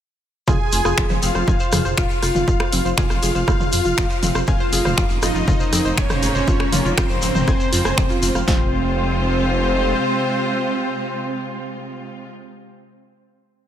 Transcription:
0.48 detuned saw bass F1, synth arpeggio sound F4, supersaw synth G#4, analog polysynth G#5, kick, cross-stick, mid tom, shekere
0.72 detuned saw bass F1, synth arpeggio sound F4, open hi-hat, shekere
0.85 detuned saw bass F1, synth arpeggio sound F4, cross-stick, shekere
0.98 detuned saw bass F1, synth arpeggio sound F4, finger snap, kick, shekere
1.10 detuned saw bass F1, synth arpeggio sound C5, mid tom, shekere
1.22 detuned saw bass F1, synth arpeggio sound C4, supersaw synth F4, analog polysynth F5, open hi-hat, shekere
1.35 detuned saw bass F1, synth arpeggio sound C5, cross-stick, shekere
1.47 detuned saw bass F1, synth arpeggio sound G#5, kick, shekere
1.60 synth arpeggio sound C5, shekere
1.72 detuned saw bass F2, synth arpeggio sound G#4, cross-stick, mid tom, open hi-hat, shekere
1.85 detuned saw bass F1, synth arpeggio sound C5, shekere
1.97 detuned saw bass D#1, synth arpeggio sound F4, supersaw synth F4, analog polysynth F5, finger snap, kick, shekere
2.11 shekere
2.23 detuned saw bass F1, synth arpeggio sound F4, cross-stick, open hi-hat, shekere
2.35 detuned saw bass F1, synth arpeggio sound F4, mid tom, shekere
2.48 detuned saw bass F1, synth arpeggio sound F4, kick, shekere
2.60 synth arpeggio sound C5, finger snap, cross-stick
2.73 detuned saw bass F1, synth arpeggio sound C4, open hi-hat, shekere
2.85 detuned saw bass F1, synth arpeggio sound C5, shekere
2.98 detuned saw bass F1, supersaw synth F4, analog polysynth F5, synth arpeggio sound G#5, finger snap, kick, mid tom, shekere
3.10 detuned saw bass F1, synth arpeggio sound C5, cross-stick, shekere
3.23 detuned saw bass F1, synth arpeggio sound G#4, open hi-hat, shekere
3.35 detuned saw bass F1, synth arpeggio sound C5, shekere
3.48 detuned saw bass F1, synth arpeggio sound F4, kick, cross-stick, shekere
3.60 mid tom, shekere
3.72 detuned saw bass F2, synth arpeggio sound F4, open hi-hat, shekere
3.85 detuned saw bass F1, synth arpeggio sound F4, shekere
3.98 detuned saw bass D#1, synth arpeggio sound F4, finger snap, kick, cross-stick, shekere
4.10 synth arpeggio sound C5, shekere
4.23 detuned saw bass F1, synth arpeggio sound C4, mid tom, open hi-hat, shekere
4.35 detuned saw bass F1, synth arpeggio sound C5, cross-stick, shekere
4.47 detuned saw bass F1, string section G#2 C#3 A#3, supersaw synth F4, analog polysynth F5, synth arpeggio sound G#5, kick, shekere
4.60 synth arpeggio sound C5
4.73 detuned saw bass F1, synth arpeggio sound G#4, open hi-hat, shekere
4.85 detuned saw bass F1, synth arpeggio sound C5, cross-stick, mid tom, shekere
4.97 detuned saw bass F1, synth arpeggio sound F4, finger snap, kick, shekere
5.10 detuned saw bass F1, shekere
5.22 detuned saw bass F1, supersaw synth D#4, synth arpeggio sound F4, analog polysynth D#5, cross-stick, open hi-hat, shekere
5.35 detuned saw bass F1, synth arpeggio sound F4, shekere
5.48 detuned saw bass F1, synth arpeggio sound F4, kick, mid tom, shekere
5.60 synth arpeggio sound C5, shekere
5.73 detuned saw bass F2, synth arpeggio sound C4, cross-stick, open hi-hat, shekere
5.85 detuned saw bass F1, synth arpeggio sound C5, shekere
5.98 detuned saw bass D#1, supersaw synth C#4, analog polysynth C#5, synth arpeggio sound G#5, finger snap, kick, shekere
6.10 synth arpeggio sound C5, cross-stick, mid tom, shekere
6.23 detuned saw bass F1, synth arpeggio sound G#4, open hi-hat, shekere
6.35 detuned saw bass F1, synth arpeggio sound C5, shekere
6.47 detuned saw bass F1, synth arpeggio sound F4, kick, shekere
6.60 finger snap, cross-stick
6.73 detuned saw bass F1, synth arpeggio sound F4, mid tom, open hi-hat, shekere
6.85 detuned saw bass F1, synth arpeggio sound F4, shekere
6.98 detuned saw bass F1, supersaw synth C4, synth arpeggio sound F4, analog polysynth C5, finger snap, kick, cross-stick, shekere
7.10 detuned saw bass F1, synth arpeggio sound C5, shekere
7.22 detuned saw bass F1, synth arpeggio sound C4, open hi-hat, shekere
7.35 detuned saw bass F1, synth arpeggio sound C5, mid tom, shekere
7.48 detuned saw bass F1, synth arpeggio sound G#5, kick, cross-stick, shekere
7.60 synth arpeggio sound C5, shekere
7.72 detuned saw bass F2, synth arpeggio sound F4, open hi-hat, shekere
7.85 detuned saw bass F1, synth arpeggio sound G#5, cross-stick, shekere
7.98 detuned saw bass D#1, synth arpeggio sound C5, finger snap, kick, mid tom, shekere
8.10 synth arpeggio sound F4, shekere
8.22 detuned saw bass F1, synth arpeggio sound F4, open hi-hat, shekere
8.35 detuned saw bass F1, synth arpeggio sound F5, cross-stick, shekere
8.48 detuned saw bass F1, supersaw synth C4, string section F4, synth arpeggio sound F4, analog polysynth C5, kick, snare

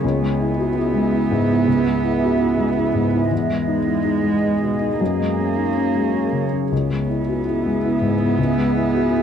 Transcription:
Already playing: ambient pad G#4
0.02 upright piano C#2, cello B3, ambient pad B3 E5
0.22 upright piano G#3
0.40 upright piano E4
0.58 upright piano F#4
0.76 upright piano E4
0.94 upright piano G#3
1.12 upright piano E4
1.31 upright piano G#2
1.50 upright piano E4
1.67 upright piano C#2
1.85 upright piano G#3
2.03 upright piano E4
2.22 upright piano F#4
2.40 upright piano E4
2.58 upright piano G#3
2.77 upright piano E4
2.94 upright piano G#2
3.13 upright piano E4
3.31 upright piano E2, cello G#3, ambient pad G#4 D#5
3.49 upright piano G#3
3.67 upright piano D#4
3.86 upright piano E4
4.04 upright piano D#4
4.24 upright piano G#3
4.43 upright piano D#4
4.62 upright piano B2
4.81 upright piano D#4
5.00 upright piano F#2, cello A#3, ambient pad A#3 C#5
5.20 upright piano G#3
5.39 upright piano C#4
5.57 upright piano D#4
5.76 upright piano C#4
5.95 upright piano G#3
6.14 upright piano C#4
6.32 upright piano C#3
6.53 upright piano C#4
6.71 upright piano C#2, ambient pad B3 G#4 E5, cello B3
6.90 upright piano G#3
7.09 upright piano E4
7.27 upright piano F#4
7.46 upright piano E4
7.65 upright piano G#3
7.84 upright piano E4
8.01 upright piano G#2
8.20 upright piano E4
8.38 upright piano C#2
8.58 upright piano G#3
8.75 upright piano E4
8.94 upright piano F#4
9.11 upright piano E4

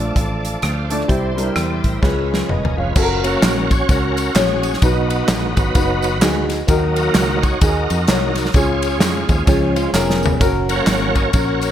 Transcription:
Already playing: fingered electric bass A#1, tonewheel organ F3 A3 D4 A4, grand piano F4, string section D5 F5 A5 D6
0.16 fingered electric bass A1, kick, closed hi-hat
0.45 closed hi-hat
0.62 fingered electric bass D2, tonewheel organ C5 F5, cross-stick, closed hi-hat
0.90 grand piano A3 D4 F4 D5, tonewheel organ A4 D5, closed hi-hat
1.01 cross-stick
1.08 fingered electric bass C2, grand piano C3 G3 C4 E4 C5, tonewheel organ G3 C4 E4 C5, string section C5 E5 G5 C6, kick, closed hi-hat
1.36 grand piano G3 C4 D4 A#4, closed hi-hat
1.42 grand piano E4
1.56 fingered electric bass E2, tonewheel organ A4 D5, cross-stick, closed hi-hat
1.84 fingered electric bass A1, tonewheel organ A#4 E5, kick, closed hi-hat
2.01 fingered electric bass C#2, grand piano C#3 G#3 C#4 F4 B4, tonewheel organ G#3 C#4 E4 B4, string section C#5 F5 G#5 B5, kick, snare
2.07 tonewheel organ F4
2.34 snare
2.49 fingered electric bass E1, tonewheel organ A#4 D#5, grand piano B4 D#5, mid tom
2.65 floor tom
2.76 fingered electric bass F1, tonewheel organ F4 B4, grand piano C#5 F5
2.96 fingered electric bass F#1, grand piano C#4 F#4 A4, kick, crash, tambourine
3.02 grand piano A#4
3.23 tonewheel organ F#3 A#3 C#4 F#4 A#4, ride, tambourine
3.43 fingered electric bass A#1, snare, clap, ride, tambourine
3.71 tonewheel organ C#5, kick, ride, tambourine
3.89 fingered electric bass C#2, grand piano C#4 F#4 C#5, tonewheel organ C#4 F#4 A#4, kick, ride, tambourine
4.17 ride, tambourine
4.35 fingered electric bass A#1, grand piano C#4 F#4 C#5, tonewheel organ C#4 G#4, snare, clap, ride, tambourine
4.63 ride, tambourine
4.73 tonewheel organ G#4, snare
4.82 fingered electric bass B1, grand piano B2 D#4 F#4 B4, tonewheel organ B3 D#4 F#4, kick, ride, tambourine
5.10 ride, tambourine
5.28 fingered electric bass A#1, snare, clap, ride, tambourine
5.56 fingered electric bass G#1, tonewheel organ F#3 B3 D#4 F#4 B4, kick, ride, tambourine
5.75 fingered electric bass F#1, grand piano D#4 F#4 B4, kick, ride, tambourine
6.02 ride, tambourine
6.21 fingered electric bass D2, grand piano D#4 F#4 G#4, snare, clap, ride, tambourine
6.50 snare, ride, tambourine
6.67 fingered electric bass D#2, grand piano D#3 D#4 F#4 A#4, tonewheel organ F#3 A#3 D#4, kick, ride, tambourine
6.96 tonewheel organ D#4 F#4 A#4, ride, tambourine
7.15 fingered electric bass C#2, snare, clap, ride, tambourine
7.42 tonewheel organ C#5, kick, ride, tambourine
7.61 fingered electric bass D#2, grand piano D#4 F#4 G#4, tonewheel organ D#4 F#4 A#4, kick, ride, tambourine
7.90 fingered electric bass F2, ride, tambourine
8.08 fingered electric bass C2, grand piano D#4 F#4 C#5, snare, clap, ride, tambourine
8.35 tonewheel organ A#4, snare, ride, tambourine
8.45 snare
8.54 fingered electric bass C#2, grand piano C#3 C#4 F4 G#4, tonewheel organ F4 G#4 C#5, kick, ride, tambourine
8.82 ride, tambourine
9.01 fingered electric bass F2, snare, clap, ride, tambourine
9.29 fingered electric bass D#2, tonewheel organ F3 G#3 C#4, kick, ride, tambourine
9.47 fingered electric bass C#2, clean electric guitar F3 C#4, grand piano C#4 F4 G#4, kick, ride, tambourine
9.76 clean electric guitar G#3 F4, ride, tambourine
9.93 fingered electric bass F1, clean electric guitar B3 G#4, grand piano C#4 F4 A#4, snare, clap, tambourine
10.10 snare
10.23 floor tom, tambourine
10.40 fingered electric bass F#1, grand piano C#4 F#4 A#4, kick, ride, tambourine
10.69 tonewheel organ F#3 A#3 C#4 A#4 C#5 F#5, ride, tambourine
10.87 fingered electric bass G#1, snare, clap, ride, tambourine
11.15 tonewheel organ D#5, kick, ride, tambourine
11.33 fingered electric bass A#1, grand piano C#4 F#4 A#4, tonewheel organ F#4 A#4 C#5, kick, ride, tambourine
11.61 ride, tambourine

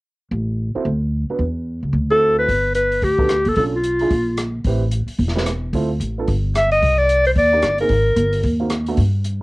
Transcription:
0.31 upright bass A1
0.75 grand piano C4 E4 F#4 A4, muted upright bass stroke
0.85 upright bass D2
1.30 grand piano B3 D4 F#4 B4, muted upright bass stroke
1.39 upright bass E2
1.83 upright bass C#2
1.93 upright bass D2
2.11 grand piano C4 E4 F#4 A4, clarinet A4
2.39 clarinet B4
2.48 upright bass G1, kick, open hi-hat
2.75 clarinet B4, closed hi-hat
2.92 open hi-hat
3.02 upright bass D2, clarinet G4, kick, open hi-hat
3.18 grand piano B3 D4 F#4 A4, kick
3.29 cross-stick, closed hi-hat
3.45 upright bass A#1, clarinet A4, open hi-hat
3.56 upright bass B1, grand piano C#4 D4 F4 A4, clarinet A4, kick, open hi-hat
3.75 clarinet F4
3.84 closed hi-hat
3.99 grand piano D4 E4 F4 G#4, open hi-hat
4.11 upright bass A#1, kick, open hi-hat
4.37 cross-stick, closed hi-hat
4.64 upright bass A1, grand piano C4 E4 G4 B4, kick, open hi-hat
4.91 closed hi-hat
5.06 muted upright bass stroke, open hi-hat
5.18 upright bass E1, kick, open hi-hat
5.28 snare
5.35 grand piano C4 E4 G4 B4, snare
5.46 cross-stick, closed hi-hat
5.73 upright bass D2, grand piano C4 E4 F4 A4, kick, open hi-hat
6.00 upright bass A1, closed hi-hat
6.18 grand piano B3 D4 F4 A4
6.28 upright bass G1, kick, open hi-hat
6.55 clarinet E5, cross-stick, closed hi-hat
6.72 clarinet D#5, open hi-hat
6.82 upright bass C2, kick, open hi-hat
6.98 clarinet D5
7.09 closed hi-hat
7.25 clarinet C5, open hi-hat
7.35 upright bass D#2, clarinet D5, kick, open hi-hat
7.53 grand piano A#3 D4 D#4 G4
7.62 upright bass G1, cross-stick, closed hi-hat
7.78 grand piano A#3 C4 D#4 G#4, clarinet A#4, open hi-hat
7.89 upright bass G#1, kick, open hi-hat
8.16 upright bass G1, closed hi-hat
8.33 open hi-hat
8.43 upright bass D#2, kick, open hi-hat
8.60 grand piano A#3 C4 D#4 F#4
8.70 cross-stick, closed hi-hat
8.86 grand piano A3 B3 D4 F#4, open hi-hat
8.97 upright bass G2, kick, open hi-hat
9.24 closed hi-hat

